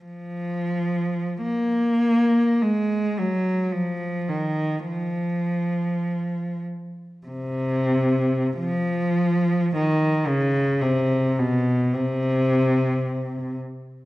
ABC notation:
X:1
M:3/4
L:1/8
Q:1/4=53
K:Fphr
V:1 name="Cello" clef=bass
F,2 B,2 A, G, | F, E, F,3 z | C,2 F,2 E, D, | C, _C, =C,3 z |]